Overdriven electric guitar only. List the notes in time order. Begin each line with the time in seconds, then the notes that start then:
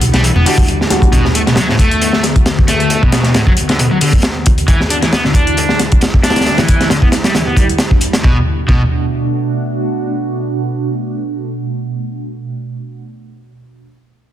0.14 G3
0.24 E3
0.36 B3
0.46 G3
1.13 B2
1.35 A3
1.48 B2
1.58 F#3
1.70 A2
1.80 A3
2.68 A3
3.03 B2
3.35 A2
3.47 F#3
3.69 D3
3.79 B2
3.91 F#3
4.01 D3
4.68 E3
4.90 D4
5.03 E3
5.13 B3
5.25 D3
5.35 D4
6.24 D4
6.58 E3
6.90 D3
7.03 B3
7.25 G3
7.35 E3
7.47 B3
7.57 G3
8.24 B2
8.68 B2